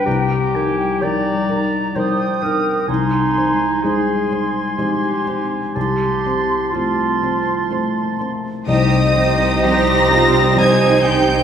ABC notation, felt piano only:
X:1
M:3/4
L:1/8
Q:1/4=63
K:Cm
V:1 name="Felt piano"
C,, [EB] [G,EB] [EB] [G,EB] [EB] | C,, [Ec] [A,Ec] [Ec] [A,Ec] [Ec] | C,, [Cc] [=A,Cc] [Cc] [A,Cc] [Cc] | C,, [Cc] [G,Cc] [Cc] [G,Cc] [Cc] |]